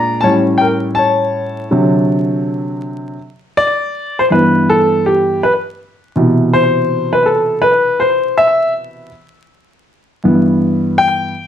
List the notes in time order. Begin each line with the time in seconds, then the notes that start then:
Already playing: A#2 G#3 D4 D5 A#5
0.21 A2 G3 C#4 C#5 A5
0.58 A#4 G5
0.95 C#5 A5
1.71 C3 D3 F#3
3.57 D5
4.19 C5
4.30 G2 E3 B3 B4
4.69 A4
5.06 G4
5.43 B4
6.16 B2 C3 E3
6.53 C5
7.13 B4
7.26 A4
7.62 B4
8.00 C5
8.37 E5
10.24 G2 E3 B3
10.98 G5